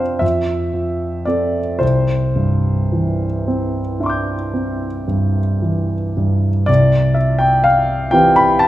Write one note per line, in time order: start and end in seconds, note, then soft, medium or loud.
0.00 0.19 F2 soft
0.00 0.25 F3 soft
0.00 0.25 C4 soft
0.00 0.25 D4 soft
0.00 0.21 C5 medium
0.00 0.25 F5 medium
0.00 0.25 G5 medium
0.19 1.77 F2 soft
0.19 1.25 E5 medium
0.74 1.59 F3 soft
1.25 1.78 C4 soft
1.25 1.78 A4 soft
1.25 1.81 D5 medium
1.79 6.64 C2 soft
1.79 5.06 C5 medium
2.36 3.25 G2 soft
2.92 3.79 E3 soft
3.48 4.33 C4 soft
4.00 4.86 D4 soft
4.00 6.64 E5 soft
4.00 6.65 C6 soft
4.06 6.67 D6 soft
4.06 6.69 G6 soft
4.54 5.39 C4 soft
5.08 5.94 G2 soft
5.62 6.48 E3 soft
6.17 6.69 G2 soft
6.66 8.11 C2 soft
6.66 7.17 D5 medium
7.14 7.40 E5 medium
7.39 7.65 G5 medium
7.64 8.13 F5 medium
8.11 8.68 E3 soft
8.11 8.68 C4 soft
8.11 8.68 G4 soft
8.11 8.68 B4 soft
8.11 8.37 G5 medium
8.36 8.62 B5 medium
8.59 8.68 A5 medium